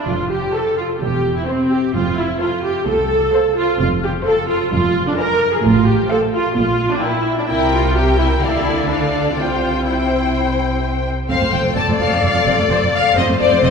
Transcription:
0.07 double bass section F1, cello section F2, viola section F4
0.31 viola section G4
0.54 violin section A4 C5 A5, viola section A4
0.77 viola section F4
1.01 double bass section E1, cello section E2, viola section G4
1.37 viola section E4
1.47 viola section C4, violin section C5 G5
1.71 viola section G4
1.94 double bass section F1, cello section F2, viola section F4
2.18 viola section E4
2.40 viola section F4, violin section A4 C5 F5
2.64 viola section G4
2.87 double bass section C2, cello section C2, viola section A4
3.33 violin section A4 C5 F5
3.57 viola section F4
3.80 double bass section F1, cello section F2, viola section F4
4.03 viola section G4
4.26 viola section A4, violin section A4 C5 F5
4.48 viola section F4
4.72 double bass section F1, cello section F2, viola section F4
5.07 viola section D4
5.17 viola section A#4, violin section B4 D5 G#5
5.54 viola section G#4
5.64 double bass section A1, cello section A2, viola section F4
5.87 viola section G4
6.10 viola section A4, violin section C5 F5 A5
6.34 viola section F4
6.56 double bass section A#1, cello section A#2, viola section F4
6.92 viola section D4
7.02 viola section E4, violin section A#4 G5
7.38 viola section D4
7.49 double bass section C2, cello section C3, viola section E4, violin section A#4 G5
7.72 viola section F4
7.95 viola section G4, violin section A#4 G5
8.19 viola section E4
8.41 double bass section D2, cello section D3, viola section E4, violin section A4 D5 F5
8.89 viola section D4, violin section A4 D5 F5
9.36 double bass section C2, cello section C3, viola section F4, violin section C5 G5
9.84 viola section E4, violin section C5 G5
11.29 double bass section F1, cello section F2, viola section C4 A4, violin section C5 F5
11.40 cello section F2, viola section A3
11.52 double bass section F1, cello section F2, viola section F3, violin section G5
11.65 cello section F2, viola section A3
11.76 double bass section F1, cello section F2, viola section C4, violin section D5 A5
11.88 cello section F2, viola section A3
11.99 double bass section F1, cello section F2, viola section F3, violin section F5
12.11 cello section F2, viola section C4
12.22 double bass section F1, cello section F2, viola section A3, violin section F5
12.34 cello section F2, viola section F3
12.46 double bass section F1, cello section F2, viola section C4
12.58 cello section F2, viola section A3, violin section D5
12.69 double bass section F1, cello section F2, viola section F3, violin section C5
12.81 cello section F2, viola section C4
12.94 violin section F5
13.16 double bass section F1, cello section F2, viola section C4, violin section C5 D#5
13.28 cello section F2, viola section A3
13.40 double bass section F1, cello section F2, viola section F3, violin section D5
13.51 cello section F2, viola section A3
13.62 double bass section F1, cello section F2, viola section C4, violin section D#5

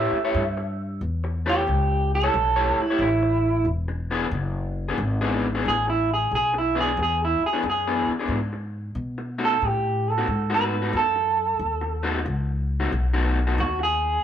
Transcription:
Already playing: clean electric guitar A3 E4 G4 C#5 E5
0.12 muted upright bass stroke
0.25 clean electric guitar A3 E4 G4 C#5
0.34 upright bass G2
0.57 muted clean electric guitar stroke
1.01 upright bass E2
1.24 muted clean electric guitar stroke
1.46 clean electric guitar A3 E4 G4 C#5
1.67 upright bass C#2, muted clean electric guitar stroke
2.15 clean electric guitar A4
2.24 clean electric guitar A3 E4 G4 C#5
2.34 upright bass B1, muted clean electric guitar stroke
2.56 clean electric guitar A3 E4 G4 C#5
2.76 muted upright bass stroke
2.81 clean electric guitar E4
2.90 clean electric guitar A3 E4 G4 C#5
2.99 upright bass A1, clean electric guitar E4
3.23 muted clean electric guitar stroke
3.65 upright bass E1
3.88 muted clean electric guitar stroke
4.11 clean electric guitar E3 B3 D4 G#4
4.31 upright bass F#1, muted clean electric guitar stroke
4.89 clean electric guitar E3 B3 D4 G#4
4.98 upright bass G#1, muted clean electric guitar stroke
5.21 clean electric guitar E3 B3 D4 G#4
5.55 clean electric guitar E3 B3 D4 G#4
5.66 upright bass A1, clean electric guitar G#4
5.88 clean electric guitar E4, muted clean electric guitar stroke
6.14 clean electric guitar G#4
6.31 upright bass B1, clean electric guitar G#4
6.54 muted clean electric guitar stroke
6.58 clean electric guitar E4
6.75 clean electric guitar E3 B3 D4 G#4
6.80 clean electric guitar G#4
6.97 upright bass E2, muted clean electric guitar stroke
7.03 clean electric guitar G#4
7.25 clean electric guitar E4
7.41 muted upright bass stroke
7.46 clean electric guitar G#4
7.53 clean electric guitar E3 B3 D4 G#4
7.63 upright bass F#2, muted clean electric guitar stroke
7.70 clean electric guitar G#4
7.87 clean electric guitar E3 B3 D4 G#4
8.07 muted upright bass stroke
8.19 clean electric guitar E3 B3 D4 G#4
8.28 upright bass G#2
8.53 muted clean electric guitar stroke
8.95 upright bass B2
9.18 muted clean electric guitar stroke
9.38 clean electric guitar B2 A3 D#4 F#4
9.45 clean electric guitar A4
9.62 upright bass A2, muted clean electric guitar stroke
9.66 clean electric guitar G4
10.10 clean electric guitar A4
10.18 clean electric guitar B2 A3 D#4 F#4
10.28 upright bass G#2, muted clean electric guitar stroke
10.50 clean electric guitar B2 A3 D#4 F#4
10.54 clean electric guitar B4
10.82 clean electric guitar B2 A3 D#4 F#4
10.93 upright bass F#2, clean electric guitar A4
11.16 muted clean electric guitar stroke
11.59 upright bass D#2
11.81 muted clean electric guitar stroke
12.03 clean electric guitar B2 A3 D#4 F#4
12.25 upright bass C#2, muted clean electric guitar stroke
12.80 clean electric guitar B2 A3 D#4 F#4
12.92 upright bass B1, muted clean electric guitar stroke
13.13 clean electric guitar B2 A3 D#4 F#4
13.47 clean electric guitar B2 A3 D#4 F#4
13.58 upright bass D#2, clean electric guitar F#4
13.79 clean electric guitar G#4, muted clean electric guitar stroke

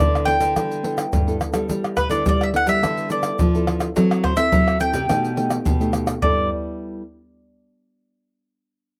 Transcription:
Already playing: nylon-string guitar B3 E4 A4, mandolin D5
0.00 nylon-string guitar D3, pandeiro, shaker, surdo
0.15 pandeiro, tamborim, shaker
0.25 nylon-string guitar B3 E4 A4, mandolin G5, pandeiro
0.40 nylon-string guitar D3, pandeiro, shaker
0.56 nylon-string guitar D3 G3, pandeiro, tamborim, shaker, surdo
0.71 pandeiro, shaker
0.83 nylon-string guitar B3 E4 A4, pandeiro
0.98 pandeiro, tamborim, shaker
1.13 nylon-string guitar G2 D3, pandeiro, shaker, surdo
1.27 nylon-string guitar B3 E4 A4, pandeiro, shaker
1.41 pandeiro, tamborim, shaker
1.52 nylon-string guitar G3 B3 E4 A4, pandeiro, tamborim, shaker
1.69 nylon-string guitar G3, pandeiro, shaker, surdo
1.84 pandeiro, tamborim, shaker
1.97 mandolin B4, pandeiro, tamborim, shaker, surdo
2.09 nylon-string guitar D3 B3 E4 A4, mandolin D5, pandeiro, shaker
2.26 nylon-string guitar D3 G3, mandolin D5, pandeiro, shaker, surdo
2.41 mandolin E5, pandeiro, tamborim, shaker
2.53 nylon-string guitar B3 E4 A4, mandolin F#5, pandeiro
2.67 nylon-string guitar G3, mandolin E5, pandeiro, shaker
2.82 nylon-string guitar D3 G3 B3 E4 A4, pandeiro, tamborim, shaker, surdo
2.97 pandeiro, shaker
3.10 nylon-string guitar B3 E4 A4, mandolin D5, pandeiro, shaker
3.23 pandeiro, tamborim, shaker
3.39 nylon-string guitar D3 F3, pandeiro, shaker, surdo
3.54 nylon-string guitar B3 E4 A4, pandeiro, shaker
3.67 pandeiro, tamborim
3.80 pandeiro, tamborim, shaker
3.96 nylon-string guitar F#3 C4 E4 A4, pandeiro, shaker, surdo
4.11 pandeiro, tamborim, shaker
4.24 mandolin C5, pandeiro, tamborim, surdo
4.36 nylon-string guitar C4 E4 A4, mandolin E5, pandeiro, shaker
4.52 nylon-string guitar F#3, pandeiro, shaker, surdo
4.68 pandeiro, tamborim, shaker
4.79 nylon-string guitar C4 E4 A4, mandolin G5, pandeiro, shaker
4.93 nylon-string guitar C3, pandeiro, shaker
5.09 nylon-string guitar B2 A3 D#4 G4, pandeiro, tamborim, shaker, surdo
5.25 pandeiro, shaker
5.36 nylon-string guitar A3 D#4 G4, pandeiro
5.50 pandeiro, tamborim, shaker
5.65 nylon-string guitar B2, pandeiro, shaker, surdo
5.80 nylon-string guitar A3 D#4 G4, pandeiro, shaker
5.93 pandeiro, tamborim, shaker
6.07 pandeiro, tamborim, shaker
6.22 nylon-string guitar G2 G3 B3 E4 A4, mandolin D5, surdo

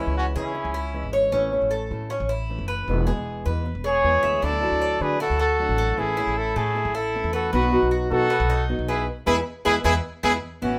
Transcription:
Already playing: steel-string acoustic guitar E3 G#3 C#4 E4, trumpet C#4 E4, cuban tres E4
0.07 upright bass C#2
0.17 trumpet C#4 F#4
0.35 upright bass C#3, steel-string acoustic guitar E3 G#3 C#4 E4, trumpet C#4 E4, cuban tres G#4
0.55 muted steel-string acoustic guitar stroke
0.65 upright bass C#2
0.74 cuban tres E4
0.94 steel-string acoustic guitar E3 G#3 C#4 E4
1.03 upright bass G#1
1.13 cuban tres C#5
1.32 upright bass A1, steel-string acoustic guitar E3 A3 C#4 E4, cuban tres C#4
1.52 steel-string acoustic guitar A3 C#4 E4
1.61 upright bass A1
1.71 cuban tres A4
1.91 upright bass A2, steel-string acoustic guitar A3 C#4 E4
2.10 cuban tres C#4, muted steel-string acoustic guitar stroke
2.20 upright bass A1
2.29 cuban tres E4
2.49 steel-string acoustic guitar E3 A3 C#4 E4
2.59 upright bass F#1
2.68 cuban tres B4
2.88 upright bass E1, steel-string acoustic guitar B2 E3 G#3 B3 E4
3.07 steel-string acoustic guitar E3 G#3 B3 E4, cuban tres G#4
3.17 upright bass E1
3.46 upright bass E2, steel-string acoustic guitar E3 G#3 B3 E4, cuban tres B4
3.65 muted steel-string acoustic guitar stroke
3.75 upright bass E1
3.84 cuban tres G#4, trumpet G#4 C#5
4.03 upright bass E2, steel-string acoustic guitar E3 G#3 B3 E4
4.23 upright bass D2, cuban tres E5
4.42 upright bass D2, steel-string acoustic guitar D3 F#3 A3 D4 E4, cuban tres E4, trumpet A4 D5
4.62 steel-string acoustic guitar F#3 A3 D4 E4
4.71 upright bass D2
4.82 cuban tres D5
5.00 upright bass D3, steel-string acoustic guitar F#3 A3 D4 E4, trumpet G#4 B4
5.20 cuban tres E4, trumpet F#4 A4, muted steel-string acoustic guitar stroke
5.30 upright bass D2
5.39 trumpet F#4 A4, cuban tres A4
5.59 steel-string acoustic guitar F#3 A3 D4 E4
5.69 upright bass A1
5.78 cuban tres A4
5.98 upright bass A1, steel-string acoustic guitar E3 A3 C#4 E4, trumpet E4 G#4
6.17 steel-string acoustic guitar A3 C#4 E4, cuban tres E4
6.27 upright bass A1
6.37 trumpet E4 A4
6.56 upright bass A2, cuban tres A3, steel-string acoustic guitar A3 C#4 E4, trumpet E4 G#4
6.75 muted steel-string acoustic guitar stroke
6.85 upright bass A1
6.95 cuban tres E4, trumpet E4 A4
7.14 steel-string acoustic guitar E3 A3 C#4 E4
7.24 upright bass E2
7.33 trumpet F#4 A4, cuban tres B4
7.52 upright bass B1, steel-string acoustic guitar B2 F#3 B3 D#4 F#4, cuban tres B3, trumpet F#4 B4
7.72 steel-string acoustic guitar F#3 B3 D#4 F#4
7.82 upright bass B1
7.91 cuban tres F#4
8.11 upright bass B2, steel-string acoustic guitar F#3 B3 D#4 F#4, trumpet F#4 A4
8.30 cuban tres B3, muted steel-string acoustic guitar stroke
8.40 upright bass B1
8.50 cuban tres D#4
8.68 steel-string acoustic guitar F#3 B3 D#4 F#4
8.79 upright bass B1
8.88 trumpet E4 G#4, cuban tres B4
9.26 upright bass E2, steel-string acoustic guitar G#3 B3 E4, trumpet E4 G#4, cuban tres E4 G#4 B4
9.65 upright bass E2, steel-string acoustic guitar G#3 B3 E4, trumpet E4 G#4, cuban tres E4 G#4 B4
9.84 upright bass E2, steel-string acoustic guitar G#3 B3 E4, cuban tres E4 G#4 B4, trumpet E4 G#4
10.23 upright bass E2, steel-string acoustic guitar G#3 B3 E4, cuban tres E4 G#4 B4, trumpet E4 G#4
10.61 upright bass A1, steel-string acoustic guitar E3 B3 C#4 E4, trumpet C#4 F#4, cuban tres E4

